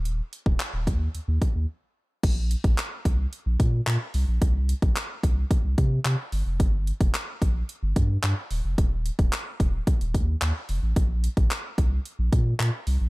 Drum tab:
CC |----------------|x---------------|----------------|----------------|
HH |x-x-x-x-x-x-----|x-xxx-x-x-x-x-o-|x-xxx-x-x-x-x-o-|x-xxx-x-x-x-x-o-|
CP |----x-----------|----x-------x---|----x-------x---|----x-------x---|
BD |---o--o---o-----|o--o--o---o-----|o--o--o-o-o-----|o--o--o---o-----|

CC |----------------|----------------|
HH |x-xxx-x-xxx-x-o-|x-xxx-x-x-x-x-o-|
CP |----x-------x---|----x-------x---|
BD |o--o--o-o-o-----|o--o--o---o-----|